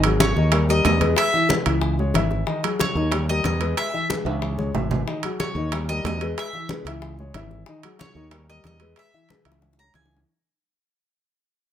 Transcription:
Already playing: G#1
0.04 F#3 F#4 G#4, high bongo, high conga, high timbale
0.20 C#5, high bongo, high conga, high timbale
0.36 D#2 D#3 D#4 D#5, high bongo, high conga
0.52 G3 G4 A#4, high bongo, high conga, high timbale
0.69 G3 G4 A#4 D#5, high conga
0.85 E2 D#5, high bongo, low bongo, high conga, high timbale, low timbale
1.01 G#3 G#4 B4, high bongo, high conga, high timbale
1.17 E5, high bongo, high conga, high timbale
1.33 E3 E4 E5, high bongo, high conga
1.49 G#3 G#4 B4, high bongo, high conga, high timbale
1.66 C#2 E3 E4 E5, high bongo, high timbale
1.81 high bongo, high conga
1.99 G#3 G#4 C#5, high conga
2.14 G#1 E3 E4 E5, high bongo, low bongo, high conga, high timbale
2.31 high bongo, high conga
2.47 D#3 D#4 D#5, high bongo, high conga
2.63 F#3 F#4 G#4, high bongo, high conga, high timbale
2.79 C#5, high bongo, high conga, high timbale
2.95 D#2 D#3 D#4 D#5, high bongo, high conga
3.12 G3 G4 A#4, high bongo, high conga, high timbale
3.29 G3 G4 A#4 D#5, high conga
3.44 E2 D#5, high bongo, low bongo, high conga, high timbale
3.61 G#3 G#4 B4, high bongo, high timbale
3.77 E5, high bongo, high conga, high timbale
3.94 E3 E4 E5, high bongo, high conga
4.10 G#3 G#4 B4, high bongo, high conga, high timbale
4.25 C#2 E3 E4 E5, high bongo, high timbale
4.42 high bongo, high conga
4.58 G#3 G#4 C#5, high conga
4.74 G#1 E3 E4 E5, high bongo, low bongo, low conga, low timbale
4.91 high bongo, low conga, low timbale
5.07 D#3 D#4 D#5, high bongo, high conga
5.23 F#3 F#4 G#4, high bongo, high conga, high timbale
5.40 C#5, high bongo, high conga, high timbale
5.55 D#2 D#3 D#4 D#5, high bongo, high conga
5.72 G3 G4 A#4, high bongo, high conga, high timbale
5.89 G3 G4 A#4 D#5, high conga
6.04 E2 D#5, high bongo, low bongo, high conga, high timbale, low timbale
6.21 G#3 G#4 B4, high bongo, high timbale
6.38 E5, high bongo, high conga, high timbale
6.53 E3 E4 E5, high bongo, high conga
6.69 G#3 G#4 B4, high bongo, high conga, high timbale
6.85 C#2 E3 E4 E5, high bongo, high timbale
7.02 high bongo, high conga
7.19 G#3 G#4 C#5, high conga
7.34 G#1 E3 E4 E5, high bongo, low bongo, high conga, high timbale
7.51 high bongo, high conga
7.66 D#3 D#4 D#5, high bongo, high conga
7.83 F#3 F#4 G#4, high bongo, high conga, high timbale
7.99 C#5, high bongo, high conga, high timbale
8.15 D#2 D#3 D#4 D#5, high bongo, high conga
8.31 G3 G4 A#4, high bongo, high conga, high timbale
8.49 G3 G4 A#4 D#5, high conga
8.64 E2 D#5, high bongo, low bongo, high conga, high timbale
8.80 G#3 G#4 B4, high bongo, high timbale
8.96 E5, high bongo, high conga, high timbale
9.14 E3 E4 E5, high bongo, high conga
9.29 G#3 G#4 B4, high bongo, high conga, high timbale
9.45 C#2 E3 E4 E5, high timbale
9.52 high bongo
9.62 low bongo, high conga
9.73 low bongo
9.78 G#3 G#4 C#5 A#5, high conga
9.84 low bongo
9.94 C#2 E3 E4 E5 G#5, low bongo, high conga, high timbale
10.06 low bongo
10.11 high conga
10.17 low bongo

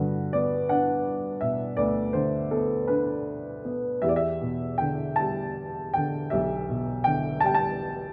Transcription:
Already playing: G2 F#4 B4
0.00 D3
0.33 B3 D5
0.69 D4 F#5
1.41 B2 E5
1.77 D2 B4 D5
2.13 D3 C5
2.51 B3 A4
2.88 D4 B4
3.65 B3
4.02 E2 G4 E5
4.09 D5
4.16 E5
4.41 B2
4.78 D3 G5
5.16 G3 A5
5.94 D3 G5
6.30 B1 G4 E5
6.69 B2
7.04 D3 G5
7.40 G3 A5
7.46 G5
7.55 A5

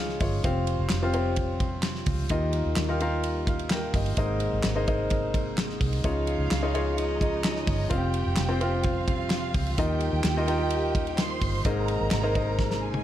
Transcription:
Already playing: C#2 C#3 F3 G#3 D#4 F4 G#4 C#5 D#5 F5
0.09 snare
0.20 G1 F4 C#5, kick, open hi-hat, ride
0.43 F1 C3 G3 C4 F4 G4 C5 F5, kick, hi-hat pedal, ride
0.67 ride
0.79 F1
0.89 F1, snare, clap, ride
1.02 C4 F4 G4 C5 F5
1.13 C4 F4 G4 C5 G5, ride
1.36 kick, ride
1.60 kick, ride
1.82 snare, clap, ride
1.95 snare
2.06 C#2, kick, open hi-hat, ride
2.29 D#2 D#3 A#3 D#4 F4 G4 A#4 D#5, kick, hi-hat pedal, ride
2.53 ride
2.66 D#2
2.76 D#2, snare, clap, ride
2.89 D#4 F4 G4 A#4 F5
3.00 D#4 F4 G4 A#4 F5, ride
3.24 ride
3.47 F5, kick, ride
3.59 ride
3.70 A#4 G5, snare, clap, ride
3.94 G1 G4 D#5, kick, open hi-hat, ride
4.06 ride
4.17 G#1 G#2 C3 G#3 D#4 G#4 A#4 C5 D#5, kick, hi-hat pedal, ride
4.40 ride
4.53 G#1
4.63 G#1, snare, clap, ride
4.76 D#4 G#4 A#4 C5 D#5
4.87 D#4 G#4 A#4 C5 D#5, kick, ride
5.10 kick, ride
5.34 kick, ride
5.57 snare, clap, ride
5.70 snare
5.81 C2, kick, open hi-hat, ride
5.93 ride
6.04 C#2 C#3 F3 D#4 F4 G#4 C#5 D#5 F5, kick, hi-hat pedal, ride
6.27 ride
6.39 C#2
6.51 C#2, snare, clap, ride
6.62 D#4 F4 G#4 C#5 D#5
6.74 D#4 F4 G#4 C#5 D#5, ride
6.98 D#4 D#5, ride
7.21 kick, ride
7.44 snare, clap, ride
7.56 snare
7.67 G1, kick, open hi-hat, ride
7.89 F1 C3 G3 C4 F4 G4 C5 F5 G5, kick, hi-hat pedal, ride
8.14 ride
8.26 F1
8.36 F1, snare, clap, ride
8.48 C4 F4 G4 C5 G5
8.61 C4 F4 G4 C5 F5, ride
8.83 F4 F5, kick, ride
9.08 kick, ride
9.30 snare, clap, ride
9.54 C#2, kick, open hi-hat, ride
9.66 ride
9.78 D#2 D#3 G3 A#3 D#4 F4 G4 A#4 D#5 G5, kick, hi-hat pedal, ride
10.00 ride
10.13 D#2
10.24 D#2, snare, clap, ride
10.37 D#4 F4 G4 A#4 D#5
10.47 D#4 F4 G4 A#4 D#5, ride
10.70 ride
10.95 kick, ride
11.07 ride
11.18 C5 C6, snare, clap, ride
11.42 G1, kick, open hi-hat, ride
11.65 G#1 G#2 C3 G#3 D#4 G#4 A#4 C5 D#5 A#5, kick, hi-hat pedal, ride
11.88 ride
12.01 G#1
12.11 G#1, snare, clap, ride
12.23 D#4 G#4 A#4 C5 D#5
12.35 D#4 G#4 A#4 C5 D#5, kick, ride
12.59 kick, snare
12.71 snare
12.82 G#4 G#5
12.94 high tom

